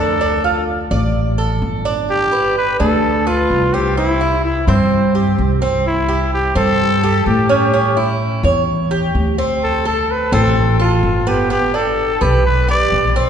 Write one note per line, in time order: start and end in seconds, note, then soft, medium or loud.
0.00 0.85 D2 medium
0.00 0.20 D4 medium
0.00 0.64 A4 medium
0.21 0.44 D4 medium
0.44 0.90 F4 medium
0.91 1.58 A1 medium
0.91 1.37 D5 medium
1.38 1.84 A4 medium
1.62 2.73 G1 medium
1.85 2.31 D4 medium
2.11 2.54 G4 loud
2.32 2.78 B4 medium
2.58 2.79 B4 medium
2.80 3.46 D2 loud
2.80 3.25 D4 medium
2.80 3.29 A4 medium
3.27 3.75 F4 loud
3.27 3.72 B4 medium
3.50 4.61 C2 medium
3.74 3.96 C4 medium
3.74 3.97 G4 medium
3.97 4.20 C4 medium
3.97 4.41 E4 loud
4.21 4.66 E4 medium
4.45 4.66 E4 medium
4.67 5.34 G2 loud
4.67 5.58 C4 medium
4.67 5.14 C5 medium
5.15 5.61 G4 medium
5.38 6.50 C2 medium
5.62 5.85 C4 medium
5.87 6.30 E4 medium
6.09 6.54 G4 medium
6.34 6.55 G4 medium
6.55 7.22 G2 loud
6.55 7.01 C4 medium
6.55 7.23 A4 loud
7.04 7.49 G4 medium
7.26 8.38 A2 medium
7.26 7.48 G4 medium
7.49 7.72 C#4 medium
7.49 8.17 G4 medium
7.74 7.97 C#4 medium
7.97 8.43 E4 medium
8.43 9.11 E2 loud
8.43 8.90 C#5 medium
8.91 9.37 G4 medium
9.15 10.27 D2 medium
9.38 9.84 C4 medium
9.64 9.85 A4 medium
9.85 10.31 A4 medium
9.85 10.13 A4 medium
10.11 10.33 B4 medium
10.32 10.99 A1 loud
10.32 10.79 C4 medium
10.32 10.78 A4 medium
10.80 11.30 F4 medium
10.80 11.26 A4 medium
11.03 12.15 G1 medium
11.27 11.49 B3 medium
11.27 11.51 G4 medium
11.50 11.74 B3 medium
11.50 11.77 G4 loud
11.74 12.20 D4 medium
11.74 12.24 A4 medium
12.21 12.88 B1 loud
12.21 12.46 G4 medium
12.21 12.67 B4 medium
12.46 12.68 B4 loud
12.68 13.14 G4 medium
12.68 13.14 D5 loud
12.92 13.30 A#1 medium
13.16 13.30 C4 medium